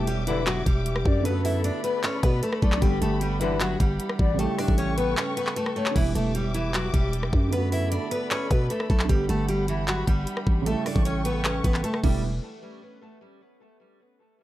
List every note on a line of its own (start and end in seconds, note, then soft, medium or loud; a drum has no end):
0.00 0.63 E1 loud
0.00 1.19 D3 medium
0.00 1.21 G3 medium
0.00 1.23 B3 medium
0.00 1.24 E4 medium
0.00 0.24 G4 loud
0.00 1.24 G4 medium
0.00 1.24 E5 medium
0.00 1.24 D6 medium
0.07 0.24 G3 medium
0.07 0.23 G4 medium
0.07 closed hi-hat medium
0.27 0.64 B1 loud
0.27 0.64 G2 loud
0.27 0.64 D3 loud
0.27 0.43 E3 medium
0.27 0.43 E4 medium
0.27 0.46 B4 medium
0.27 closed hi-hat medium
0.47 0.63 F#3 medium
0.47 0.62 F#4 medium
0.47 clap loud
0.47 closed hi-hat medium
0.66 1.04 E1 loud
0.66 1.22 G3 medium
0.66 1.22 G4 medium
0.66 kick loud
0.66 closed hi-hat medium
0.86 closed hi-hat medium
0.96 cross-stick loud
1.05 1.71 F#2 loud
1.05 1.24 D5 medium
1.05 kick loud
1.21 2.76 D3 medium
1.21 2.78 A3 medium
1.25 1.41 B3 medium
1.25 2.80 B3 medium
1.25 2.80 A4 medium
1.25 1.80 A4 loud
1.25 1.41 B4 medium
1.25 2.80 D5 medium
1.25 4.36 B5 medium
1.25 closed hi-hat medium
1.30 2.81 F#4 medium
1.45 1.61 E4 medium
1.45 1.60 E5 medium
1.45 open hi-hat loud
1.64 1.80 D4 medium
1.64 1.80 D5 medium
1.64 closed hi-hat medium
1.84 2.00 B3 medium
1.84 2.03 B4 medium
1.84 1.99 B4 medium
1.84 closed hi-hat medium
2.04 2.20 C#4 medium
2.04 2.19 C#5 medium
2.04 clap loud
2.04 closed hi-hat medium
2.23 2.42 B2 loud
2.23 2.39 B3 medium
2.23 2.39 B4 medium
2.23 kick loud
2.23 closed hi-hat medium
2.43 2.59 A3 medium
2.43 2.58 A4 medium
2.43 closed hi-hat medium
2.53 cross-stick loud
2.62 2.81 B1 loud
2.62 2.78 A3 medium
2.62 2.78 A4 medium
2.62 2.81 D5 medium
2.62 kick loud
2.72 clap loud
2.77 4.33 D3 medium
2.77 4.35 G3 medium
2.82 3.01 G1 loud
2.82 2.90 B1 medium
2.82 2.90 G2 medium
2.82 2.90 D3 loud
2.82 2.98 G3 medium
2.82 4.37 B3 medium
2.82 4.37 G4 medium
2.82 3.37 G4 loud
2.82 2.98 G4 medium
2.82 4.37 F#5 medium
2.82 kick loud
2.82 closed hi-hat medium
2.87 4.38 G4 medium
3.02 3.77 G1 loud
3.02 3.18 A3 medium
3.02 3.17 A4 medium
3.02 closed hi-hat medium
3.21 3.37 G3 medium
3.21 3.37 G4 medium
3.21 closed hi-hat medium
3.41 3.78 B1 loud
3.41 3.78 G2 loud
3.41 3.78 D3 loud
3.41 3.57 E3 medium
3.41 3.56 E4 medium
3.41 3.59 B4 medium
3.41 closed hi-hat medium
3.60 3.76 F#3 medium
3.60 3.76 F#4 medium
3.60 clap loud
3.60 closed hi-hat medium
3.80 3.99 G1 loud
3.80 4.36 G3 medium
3.80 4.35 G4 medium
3.80 kick loud
3.80 closed hi-hat medium
4.00 closed hi-hat medium
4.09 cross-stick loud
4.19 4.48 A1 loud
4.19 4.38 D5 medium
4.19 kick loud
4.34 5.90 C#3 medium
4.34 5.92 G3 medium
4.39 4.55 A3 medium
4.39 5.93 A3 medium
4.39 4.94 G4 loud
4.39 5.94 A4 medium
4.39 4.54 A4 medium
4.39 5.94 G5 medium
4.39 5.94 C#6 medium
4.39 closed hi-hat medium
4.44 5.95 E4 medium
4.58 4.75 D4 medium
4.58 4.74 D5 medium
4.58 cross-stick medium
4.58 open hi-hat loud
4.68 5.15 A1 loud
4.68 kick loud
4.78 4.94 C#4 medium
4.78 4.94 C#5 medium
4.78 closed hi-hat medium
4.97 5.14 B3 medium
4.97 5.16 B4 medium
4.97 5.13 B4 medium
4.97 closed hi-hat medium
5.17 5.33 C#4 medium
5.17 5.33 C#5 medium
5.17 clap loud
5.17 closed hi-hat medium
5.37 5.53 B3 medium
5.37 5.52 B4 medium
5.37 closed hi-hat medium
5.47 clap medium
5.56 5.72 A3 medium
5.56 5.72 A4 medium
5.56 closed hi-hat medium
5.66 cross-stick loud
5.76 5.92 A3 medium
5.76 5.92 A4 medium
5.76 5.95 C#5 medium
5.86 clap loud
5.91 7.47 D3 medium
5.91 7.49 G3 medium
5.96 6.15 E1 loud
5.96 6.12 E3 medium
5.96 7.50 B3 medium
5.96 6.11 E4 loud
5.96 7.51 G4 medium
5.96 7.51 E5 medium
5.96 7.51 D6 medium
5.96 kick loud
5.96 closed hi-hat medium
5.96 crash loud
6.00 7.52 E4 medium
6.15 6.91 E1 loud
6.15 6.31 A3 medium
6.15 6.31 A4 medium
6.15 closed hi-hat medium
6.35 6.51 G3 medium
6.35 6.50 G4 medium
6.35 closed hi-hat medium
6.54 6.71 E3 medium
6.54 6.70 E4 medium
6.54 closed hi-hat medium
6.74 6.90 F#3 medium
6.74 6.90 F#4 medium
6.74 clap loud
6.74 closed hi-hat medium
6.94 7.31 E1 loud
6.94 7.49 G3 medium
6.94 7.49 G4 medium
6.94 kick loud
6.94 closed hi-hat medium
7.13 closed hi-hat medium
7.23 cross-stick medium
7.33 7.99 F#2 loud
7.33 kick loud
7.48 9.03 D3 medium
7.48 9.06 A3 medium
7.53 7.69 B3 medium
7.53 9.07 B3 medium
7.53 9.08 A4 medium
7.53 7.68 B4 medium
7.53 9.08 D5 medium
7.53 9.08 B5 medium
7.53 closed hi-hat medium
7.58 9.09 F#4 medium
7.72 7.88 E4 medium
7.72 7.88 E5 medium
7.72 open hi-hat loud
7.92 8.08 D4 medium
7.92 8.07 D5 medium
7.92 closed hi-hat medium
8.11 8.27 B3 medium
8.11 8.27 B4 medium
8.11 closed hi-hat medium
8.31 8.47 C#4 medium
8.31 8.47 C#5 medium
8.31 clap loud
8.31 closed hi-hat medium
8.51 8.69 B2 loud
8.51 8.67 B3 medium
8.51 8.66 B4 medium
8.51 kick loud
8.51 closed hi-hat medium
8.70 8.86 A3 medium
8.70 8.86 A4 medium
8.70 closed hi-hat medium
8.80 cross-stick loud
8.90 9.09 B1 loud
8.90 9.06 A3 medium
8.90 9.05 A4 medium
8.90 kick loud
8.99 clap loud
9.05 10.61 D3 medium
9.05 10.62 G3 medium
9.09 9.28 G1 loud
9.09 9.25 G3 medium
9.09 10.64 B3 medium
9.09 9.25 G4 medium
9.09 10.65 G4 medium
9.09 10.65 F#5 medium
9.09 10.65 B5 medium
9.09 kick loud
9.09 closed hi-hat medium
9.14 10.66 G4 medium
9.29 10.04 G1 loud
9.29 9.45 A3 medium
9.29 9.45 A4 medium
9.29 closed hi-hat medium
9.49 9.65 G3 medium
9.49 9.64 G4 medium
9.49 closed hi-hat medium
9.68 9.84 E3 medium
9.68 9.84 E4 medium
9.68 closed hi-hat medium
9.88 10.04 F#3 medium
9.88 10.03 F#4 medium
9.88 clap loud
9.88 closed hi-hat medium
10.07 10.26 G1 loud
10.07 10.63 G3 medium
10.07 10.63 G4 medium
10.07 kick loud
10.07 closed hi-hat medium
10.27 closed hi-hat medium
10.37 cross-stick loud
10.47 10.75 A1 loud
10.47 kick loud
10.62 11.98 C#3 medium
10.62 12.00 G3 medium
10.66 10.82 A3 medium
10.66 12.02 A3 medium
10.66 10.82 A4 medium
10.66 12.02 A4 medium
10.66 12.02 G5 medium
10.66 12.02 C#6 medium
10.66 closed hi-hat medium
10.71 12.02 E4 medium
10.86 11.02 D4 medium
10.86 11.01 D5 medium
10.86 cross-stick medium
10.86 open hi-hat loud
10.96 11.62 A1 loud
10.96 kick loud
11.05 11.21 C#4 medium
11.05 11.21 C#5 medium
11.05 closed hi-hat medium
11.25 11.41 B3 medium
11.25 11.41 B4 medium
11.25 closed hi-hat medium
11.45 11.61 C#4 medium
11.45 11.60 C#5 medium
11.45 clap loud
11.45 closed hi-hat medium
11.64 11.83 A1 loud
11.64 11.80 B3 medium
11.64 11.80 B4 medium
11.64 kick loud
11.64 closed hi-hat medium
11.74 clap medium
11.84 12.00 A3 medium
11.84 11.99 A4 medium
11.84 closed hi-hat medium
11.94 cross-stick loud
12.03 12.40 E1 loud
12.03 12.22 D3 medium
12.03 12.22 E3 medium
12.03 12.22 G3 medium
12.03 12.22 B3 medium
12.03 12.22 D4 medium
12.03 12.22 E4 medium
12.03 12.22 G5 medium
12.03 kick loud
12.03 crash medium